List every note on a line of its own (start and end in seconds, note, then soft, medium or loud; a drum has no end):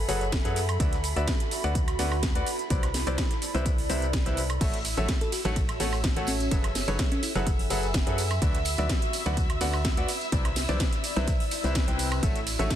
0.00 1.47 A4 medium
0.00 4.62 A4 medium
0.00 3.33 E5 medium
0.00 1.47 G#5 medium
0.00 4.62 B5 medium
0.00 5.38 B5 medium
0.08 0.42 F#1 loud
0.08 0.23 F#3 medium
0.08 0.23 G#4 medium
0.08 0.23 A4 medium
0.08 0.23 B4 medium
0.08 0.17 C#5 medium
0.08 0.23 F#5 loud
0.08 open hi-hat loud
0.08 ride medium
0.08 cabasa medium
0.21 0.28 C#5 medium
0.21 closed hi-hat soft
0.21 cabasa soft
0.32 kick loud
0.32 snare loud
0.32 closed hi-hat medium
0.32 ride medium
0.32 cabasa soft
0.45 0.78 F#2 loud
0.45 0.58 F#3 medium
0.45 0.58 G#4 medium
0.45 0.58 A4 medium
0.45 0.58 B4 medium
0.45 0.58 F#5 medium
0.45 snare soft
0.45 closed hi-hat medium
0.45 cabasa soft
0.56 open hi-hat loud
0.56 ride medium
0.56 cabasa medium
0.69 closed hi-hat soft
0.69 ride soft
0.69 cabasa soft
0.69 high woodblock medium
0.80 1.14 D2 loud
0.80 0.94 D3 medium
0.80 3.33 F#4 medium
0.80 0.94 F#4 medium
0.80 0.94 B4 medium
0.80 0.94 D5 medium
0.80 0.94 E5 medium
0.80 kick loud
0.80 closed hi-hat medium
0.80 ride medium
0.80 cabasa soft
0.93 snare soft
0.93 closed hi-hat medium
0.93 cabasa soft
1.04 open hi-hat loud
1.04 ride medium
1.04 cabasa medium
1.16 1.27 D2 loud
1.16 1.29 D3 medium
1.16 1.29 F#4 medium
1.16 1.29 B4 medium
1.16 1.29 D5 medium
1.16 1.29 E5 loud
1.16 closed hi-hat soft
1.16 cabasa soft
1.28 kick loud
1.28 snare loud
1.28 closed hi-hat medium
1.28 ride medium
1.28 cabasa soft
1.40 closed hi-hat medium
1.40 cabasa soft
1.51 open hi-hat loud
1.51 ride medium
1.51 cabasa medium
1.64 1.97 D2 loud
1.64 1.77 D3 loud
1.64 1.77 F#4 medium
1.64 1.77 B4 medium
1.64 1.77 D5 medium
1.64 1.77 F#5 loud
1.64 closed hi-hat soft
1.64 ride soft
1.64 cabasa soft
1.75 kick loud
1.75 closed hi-hat medium
1.75 ride medium
1.75 cabasa soft
1.88 snare soft
1.88 closed hi-hat medium
1.88 cabasa soft
1.88 high woodblock medium
1.99 2.33 D2 loud
1.99 2.13 D3 medium
1.99 2.13 F#4 medium
1.99 2.13 B4 medium
1.99 2.13 D5 medium
1.99 2.13 F#5 loud
1.99 snare medium
1.99 open hi-hat loud
1.99 ride medium
1.99 cabasa medium
2.12 snare soft
2.12 cabasa soft
2.12 high woodblock medium
2.23 kick loud
2.23 snare loud
2.23 closed hi-hat medium
2.23 ride medium
2.23 cabasa soft
2.35 2.43 D2 loud
2.35 2.45 F#4 medium
2.35 2.45 B4 medium
2.35 2.45 D5 medium
2.35 2.45 F#5 medium
2.35 closed hi-hat medium
2.35 cabasa soft
2.46 5.37 E4 medium
2.46 open hi-hat loud
2.46 ride medium
2.46 cabasa medium
2.59 closed hi-hat soft
2.59 cabasa soft
2.70 3.04 C2 loud
2.70 2.84 C3 medium
2.70 2.84 E4 medium
2.70 2.84 B4 medium
2.70 2.84 C5 medium
2.70 2.84 D5 medium
2.70 kick loud
2.70 closed hi-hat medium
2.70 ride medium
2.70 cabasa soft
2.83 snare soft
2.83 closed hi-hat medium
2.83 cabasa soft
2.83 high woodblock medium
2.94 snare medium
2.94 open hi-hat loud
2.94 ride medium
2.94 cabasa medium
2.99 4.61 D5 medium
3.07 3.17 C2 loud
3.07 3.20 C3 medium
3.07 3.20 E4 medium
3.07 3.20 B4 medium
3.07 3.20 C5 medium
3.07 3.20 D5 loud
3.07 closed hi-hat soft
3.07 ride soft
3.07 cabasa soft
3.18 kick loud
3.18 snare loud
3.18 closed hi-hat medium
3.18 ride medium
3.18 cabasa soft
3.31 snare soft
3.31 closed hi-hat medium
3.31 cabasa soft
3.42 open hi-hat loud
3.42 ride medium
3.42 cabasa medium
3.54 3.87 C2 loud
3.54 3.67 C3 loud
3.54 3.67 E4 medium
3.54 3.67 B4 medium
3.54 3.67 C5 medium
3.54 3.67 E5 loud
3.54 closed hi-hat soft
3.54 cabasa soft
3.66 kick loud
3.66 closed hi-hat medium
3.66 ride medium
3.66 cabasa soft
3.78 open hi-hat medium
3.78 cabasa soft
3.89 4.23 C2 loud
3.89 4.03 C3 medium
3.89 4.03 E4 medium
3.89 4.03 B4 medium
3.89 4.04 C5 medium
3.89 4.03 E5 loud
3.89 open hi-hat loud
3.89 ride medium
3.89 cabasa medium
4.02 closed hi-hat soft
4.02 cabasa soft
4.13 kick loud
4.13 snare loud
4.13 closed hi-hat medium
4.13 ride medium
4.13 cabasa soft
4.26 4.59 C2 loud
4.26 4.39 C3 medium
4.26 4.39 E4 medium
4.26 4.39 B4 medium
4.26 4.39 C5 medium
4.26 4.39 E5 medium
4.26 snare soft
4.26 closed hi-hat medium
4.26 cabasa soft
4.37 open hi-hat loud
4.37 ride medium
4.37 cabasa medium
4.50 closed hi-hat soft
4.50 ride soft
4.50 cabasa soft
4.50 high woodblock medium
4.61 4.95 A1 loud
4.61 4.75 A3 medium
4.61 7.28 F#4 medium
4.61 4.75 F#4 medium
4.61 4.75 A4 medium
4.61 4.75 C#5 medium
4.61 4.75 E5 medium
4.61 12.76 E5 medium
4.61 12.76 E6 medium
4.61 kick loud
4.61 closed hi-hat medium
4.61 crash medium
4.61 ride medium
4.61 tambourine soft
4.61 cabasa soft
4.74 snare soft
4.74 closed hi-hat medium
4.74 cabasa soft
4.85 open hi-hat loud
4.85 ride medium
4.85 tambourine medium
4.85 cabasa medium
4.97 5.08 A1 medium
4.97 5.10 A3 medium
4.97 5.10 F#4 medium
4.97 5.10 A4 medium
4.97 5.10 C#5 medium
4.97 5.10 E5 loud
4.97 closed hi-hat soft
4.97 tambourine soft
4.97 high conga medium
4.97 cabasa soft
5.09 kick loud
5.09 snare loud
5.09 closed hi-hat medium
5.09 ride medium
5.09 tambourine soft
5.09 cabasa soft
5.21 5.30 A4 medium
5.21 7.28 C#5 medium
5.21 closed hi-hat medium
5.21 cabasa soft
5.32 5.41 F#4 medium
5.32 open hi-hat loud
5.32 ride medium
5.32 tambourine medium
5.32 cabasa medium
5.45 5.78 A1 loud
5.45 5.58 A3 loud
5.45 5.58 F#4 medium
5.45 5.52 F#4 medium
5.45 5.58 A4 medium
5.45 5.58 C#5 medium
5.45 5.58 F#5 loud
5.45 6.51 A5 medium
5.45 closed hi-hat soft
5.45 ride soft
5.45 tambourine medium
5.45 high conga medium
5.45 cabasa soft
5.56 kick loud
5.56 closed hi-hat medium
5.56 ride medium
5.56 tambourine soft
5.56 cabasa soft
5.69 snare soft
5.69 closed hi-hat medium
5.69 cabasa soft
5.69 high woodblock medium
5.80 6.14 A1 loud
5.80 5.94 A3 medium
5.80 5.94 F#4 medium
5.80 5.94 A4 medium
5.80 5.94 C#5 medium
5.80 5.94 F#5 loud
5.80 snare medium
5.80 open hi-hat loud
5.80 ride medium
5.80 tambourine medium
5.80 cabasa medium
5.92 tambourine soft
5.92 cabasa soft
5.92 high woodblock medium
6.04 kick loud
6.04 snare loud
6.04 closed hi-hat medium
6.04 ride medium
6.04 cabasa soft
6.16 6.49 A1 loud
6.16 6.29 A3 medium
6.16 6.29 F#4 medium
6.16 6.29 A4 medium
6.16 6.29 C#5 medium
6.16 6.29 F#5 medium
6.16 snare soft
6.16 closed hi-hat medium
6.16 cabasa soft
6.27 6.57 C#4 medium
6.27 open hi-hat loud
6.27 ride medium
6.27 tambourine loud
6.27 cabasa medium
6.40 closed hi-hat soft
6.40 tambourine soft
6.40 cabasa soft
6.51 6.85 F#1 loud
6.51 6.65 F#3 medium
6.51 6.65 G#4 medium
6.51 9.09 A4 medium
6.51 6.65 A4 medium
6.51 6.65 B4 medium
6.51 6.65 E5 medium
6.51 kick loud
6.51 closed hi-hat medium
6.51 ride medium
6.51 tambourine soft
6.51 cabasa soft
6.63 10.95 E5 medium
6.63 snare soft
6.63 closed hi-hat medium
6.63 cabasa soft
6.63 high woodblock medium
6.75 snare medium
6.75 open hi-hat loud
6.75 ride medium
6.75 tambourine loud
6.75 cabasa medium
6.88 6.98 F#1 loud
6.88 7.01 F#3 medium
6.88 7.01 G#4 medium
6.88 7.01 A4 medium
6.88 7.01 B4 medium
6.88 7.01 C#5 loud
6.88 closed hi-hat soft
6.88 ride soft
6.88 tambourine medium
6.88 high conga medium
6.88 cabasa soft
6.99 kick loud
6.99 snare loud
6.99 closed hi-hat medium
6.99 ride medium
6.99 cabasa soft
7.11 7.21 C#4 medium
7.11 9.09 G#5 medium
7.11 snare soft
7.11 closed hi-hat medium
7.11 cabasa soft
7.23 7.31 E4 medium
7.23 open hi-hat loud
7.23 ride medium
7.23 tambourine loud
7.23 cabasa medium
7.35 7.68 F#1 loud
7.35 7.48 F#3 loud
7.35 7.43 E4 medium
7.35 7.48 G#4 medium
7.35 7.48 A4 medium
7.35 7.48 B4 medium
7.35 7.48 F#5 loud
7.35 12.76 B5 medium
7.35 closed hi-hat soft
7.35 tambourine medium
7.35 high conga medium
7.35 cabasa soft
7.46 kick loud
7.46 closed hi-hat medium
7.46 ride medium
7.46 tambourine soft
7.46 cabasa soft
7.59 open hi-hat medium
7.59 cabasa soft
7.70 8.04 F#1 loud
7.70 7.84 F#3 medium
7.70 7.84 G#4 medium
7.70 7.84 A4 medium
7.70 7.84 B4 medium
7.70 7.84 F#5 loud
7.70 open hi-hat loud
7.70 ride medium
7.70 tambourine loud
7.70 cabasa medium
7.83 closed hi-hat soft
7.83 tambourine medium
7.83 cabasa soft
7.94 kick loud
7.94 snare loud
7.94 closed hi-hat medium
7.94 ride medium
7.94 tambourine soft
7.94 cabasa soft
8.07 8.40 F#2 loud
8.07 8.20 F#3 medium
8.07 8.20 G#4 medium
8.07 8.20 A4 medium
8.07 8.20 B4 medium
8.07 8.20 F#5 medium
8.07 snare soft
8.07 closed hi-hat medium
8.07 cabasa soft
8.18 open hi-hat loud
8.18 ride medium
8.18 tambourine loud
8.18 cabasa medium
8.31 closed hi-hat soft
8.31 ride soft
8.31 tambourine medium
8.31 cabasa soft
8.31 high woodblock medium
8.42 8.76 D2 loud
8.42 8.56 D3 medium
8.42 8.56 F#4 medium
8.42 10.95 F#4 medium
8.42 8.56 B4 medium
8.42 8.56 D5 medium
8.42 8.56 E5 medium
8.42 kick loud
8.42 closed hi-hat medium
8.42 ride medium
8.42 tambourine soft
8.42 cabasa soft
8.54 snare soft
8.54 closed hi-hat medium
8.54 cabasa soft
8.65 open hi-hat loud
8.65 ride medium
8.65 tambourine loud
8.65 cabasa medium
8.78 8.89 D2 loud
8.78 8.91 D3 medium
8.78 8.91 F#4 medium
8.78 8.91 B4 medium
8.78 8.91 D5 medium
8.78 8.91 E5 loud
8.78 closed hi-hat soft
8.78 tambourine medium
8.78 high conga medium
8.78 cabasa soft
8.89 kick loud
8.89 snare loud
8.89 closed hi-hat medium
8.89 ride medium
8.89 tambourine soft
8.89 cabasa soft
9.02 closed hi-hat medium
9.02 cabasa soft
9.13 open hi-hat loud
9.13 ride medium
9.13 tambourine medium
9.13 cabasa medium
9.26 9.59 D2 loud
9.26 9.39 D3 loud
9.26 9.39 F#4 medium
9.26 9.39 B4 medium
9.26 9.39 D5 medium
9.26 9.39 F#5 loud
9.26 closed hi-hat soft
9.26 ride soft
9.26 tambourine medium
9.26 high conga medium
9.26 cabasa soft
9.37 kick loud
9.37 closed hi-hat medium
9.37 ride medium
9.37 tambourine soft
9.37 cabasa soft
9.50 snare soft
9.50 closed hi-hat soft
9.50 cabasa soft
9.50 high woodblock medium
9.61 9.95 D2 medium
9.61 9.75 D3 medium
9.61 9.75 F#4 medium
9.61 9.75 B4 medium
9.61 9.75 D5 medium
9.61 9.75 F#5 loud
9.61 snare medium
9.61 open hi-hat loud
9.61 ride medium
9.61 tambourine medium
9.61 cabasa medium
9.74 tambourine medium
9.74 cabasa soft
9.74 high woodblock medium
9.85 kick loud
9.85 snare loud
9.85 closed hi-hat medium
9.85 ride medium
9.85 tambourine soft
9.85 cabasa soft
9.97 10.05 D2 loud
9.97 10.07 F#4 medium
9.97 10.07 B4 medium
9.97 10.07 D5 medium
9.97 10.07 F#5 medium
9.97 snare soft
9.97 closed hi-hat medium
9.97 cabasa soft
10.08 12.76 E4 medium
10.08 open hi-hat loud
10.08 ride medium
10.08 tambourine medium
10.08 cabasa medium
10.21 closed hi-hat soft
10.21 tambourine medium
10.21 cabasa soft
10.32 10.66 C2 loud
10.32 10.46 C3 medium
10.32 10.46 E4 medium
10.32 10.46 B4 medium
10.32 10.46 C5 medium
10.32 10.46 D5 medium
10.32 12.23 D5 medium
10.32 kick loud
10.32 closed hi-hat medium
10.32 ride medium
10.32 tambourine soft
10.32 cabasa soft
10.45 snare soft
10.45 closed hi-hat soft
10.45 cabasa soft
10.45 high woodblock medium
10.56 snare medium
10.56 open hi-hat loud
10.56 ride medium
10.56 tambourine medium
10.56 cabasa medium
10.69 10.79 C2 loud
10.69 10.81 C3 medium
10.69 10.81 E4 medium
10.69 10.81 B4 medium
10.69 10.81 C5 medium
10.69 10.81 D5 loud
10.69 closed hi-hat soft
10.69 ride soft
10.69 tambourine medium
10.69 high conga medium
10.69 cabasa soft
10.80 kick loud
10.80 snare loud
10.80 closed hi-hat medium
10.80 ride medium
10.80 tambourine soft
10.80 cabasa soft
10.93 snare soft
10.93 closed hi-hat soft
10.93 cabasa soft
11.04 open hi-hat loud
11.04 ride medium
11.04 tambourine medium
11.04 cabasa medium
11.16 11.27 C2 loud
11.16 11.29 C3 loud
11.16 11.29 E4 medium
11.16 11.29 B4 medium
11.16 11.29 C5 medium
11.16 11.29 E5 loud
11.16 closed hi-hat soft
11.16 tambourine medium
11.16 high conga medium
11.16 cabasa soft
11.27 kick loud
11.27 closed hi-hat medium
11.27 ride medium
11.27 tambourine soft
11.27 cabasa soft
11.40 open hi-hat medium
11.40 cabasa soft
11.51 open hi-hat loud
11.51 ride medium
11.51 tambourine medium
11.51 cabasa medium
11.64 11.85 C2 loud
11.64 11.85 C3 medium
11.64 11.85 E4 medium
11.64 11.85 B4 medium
11.64 11.85 C5 medium
11.64 11.85 E5 medium
11.64 closed hi-hat soft
11.64 tambourine soft
11.64 cabasa soft
11.75 kick loud
11.75 snare loud
11.75 closed hi-hat medium
11.75 ride medium
11.75 tambourine soft
11.75 cabasa soft
11.88 12.21 C2 loud
11.88 12.20 C3 medium
11.88 12.20 E4 medium
11.88 12.20 B4 medium
11.88 12.20 C5 medium
11.88 12.20 G5 medium
11.88 snare soft
11.88 closed hi-hat medium
11.88 cabasa soft
11.99 open hi-hat loud
11.99 ride medium
11.99 tambourine medium
11.99 cabasa medium
12.11 closed hi-hat soft
12.11 ride soft
12.11 tambourine medium
12.11 cabasa soft
12.11 high woodblock medium
12.23 12.57 A1 loud
12.23 12.37 A3 medium
12.23 12.37 F#4 medium
12.23 12.76 F#4 medium
12.23 12.37 A4 medium
12.23 12.37 C#5 medium
12.23 12.37 E5 medium
12.23 kick loud
12.23 closed hi-hat medium
12.23 ride medium
12.23 tambourine soft
12.23 cabasa soft
12.35 snare soft
12.35 closed hi-hat medium
12.35 cabasa soft
12.47 open hi-hat loud
12.47 ride medium
12.47 tambourine loud
12.47 cabasa medium
12.59 12.70 A1 loud
12.59 12.72 A3 medium
12.59 12.72 F#4 medium
12.59 12.72 A4 medium
12.59 12.72 C#5 medium
12.59 12.72 E5 loud
12.59 closed hi-hat soft
12.59 tambourine medium
12.59 high conga medium
12.59 cabasa soft
12.70 kick loud
12.70 snare loud
12.70 closed hi-hat medium
12.70 ride medium
12.70 tambourine soft
12.70 cabasa soft